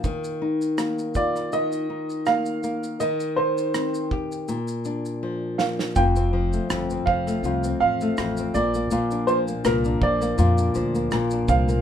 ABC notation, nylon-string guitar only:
X:1
M:4/4
L:1/16
Q:"Swing 16ths" 1/4=81
K:Bb
V:1 name="Nylon-string guitar"
E,2 E2 B,2 F2 E,2 E2 B,2 B,2 | E,2 E2 C2 G2 B,,2 D2 F,2 B,2 | [F,,F] C F, A, F,, C F, A, [F,,F] C F, A, F,, C B,, B, | [B,,F] D F, B, B,, D F, B, [B,,F] D F, B, B,, D F, B, |]